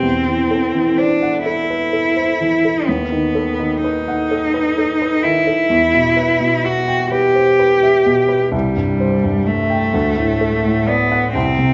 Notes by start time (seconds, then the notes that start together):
Already playing: C4
0.03 E2
0.26 E3
0.51 A4
0.74 E3
0.97 D4 C5
1.23 F#5
1.45 E4 A4
1.70 B4
1.93 A4
2.16 C5
2.41 E3
2.65 A4
2.87 D#2 B3
3.12 D#3
3.35 A4
3.60 D#3
3.81 D#4 B4
4.08 F#5
4.31 A4
4.54 B4
4.78 A4
5.02 B4
5.23 D#3 E4
5.47 A4
5.70 E2
5.94 B2
6.17 B4
6.40 B2
6.64 F#4 E5
6.88 G5
7.11 G4 B4
7.35 C5
7.59 B4
7.83 E5
8.06 B2
8.28 B4
8.52 C2 G3
8.77 G2
9.00 C5
9.23 G2
9.46 A3 E5
9.70 G5
9.94 D2
10.18 A2
10.41 A4
10.64 A2
10.87 B3 D5
11.12 F#5
11.33 C2 C4
11.58 C3